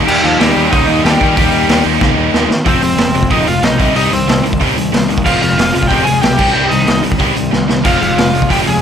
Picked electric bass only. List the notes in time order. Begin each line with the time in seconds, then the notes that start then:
0.09 D#2
0.24 D#2
0.41 D#2
0.57 D#2
0.73 C#2
0.88 D#2
1.04 D#2
1.21 D#3
1.37 D#2
1.52 D#2
1.69 D#2
1.86 D#2
2.01 C#2
2.17 D#2
2.34 D#2
2.50 D#3
2.66 F1
2.82 F1
2.99 F1
3.14 F1
3.30 F1
3.47 F1
3.62 B1
3.80 C2
3.95 C2
4.12 C2
4.27 C2
4.43 C2
4.61 C2
4.76 C2
4.93 C2
5.09 D#2
5.26 F1
5.42 F1
5.58 F1
5.75 F1
5.91 F1
6.07 F1
6.24 B1
6.39 C2
6.56 C2
6.72 C2
6.88 C2
7.04 C2
7.20 C2
7.37 C2
7.53 C2
7.69 C2
7.85 F1
8.01 F1
8.18 F1
8.34 F1
8.50 F1
8.67 F1